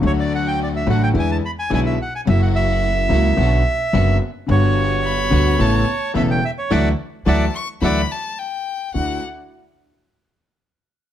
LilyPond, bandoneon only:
\new Staff \with { instrumentName = "Bandoneon" } { \time 4/4 \key d \major \tempo 4 = 108 cis''16 d''16 fis''16 g''16 d''16 e''16 fis''16 g''16 gis''16 a''16 b''16 gis''16 gis''16 e''16 fis''16 gis''16 | e''16 fis''16 e''2. r8 | cis''2. e''16 g''16 e''16 cis''16 | <d'' e'' fis''>8 r8 <d'' e'' fis''>8 r8 <d'' e'' fis''>8 r4. |
r1 | }